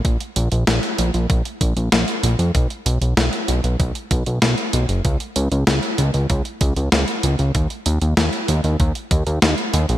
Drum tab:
HH |xxxxxxxxxxxxxxxx|xxxxxxxxxxxxxxxx|xxxxxxxxxxxxxxxx|xxxxxxxxxxxxxxxx|
SD |----o-------o---|----o-------o---|----o-------o---|----o-------o---|
BD |o-------o-o-----|o-------o-o-----|o-------o-o-----|o-------o-o-----|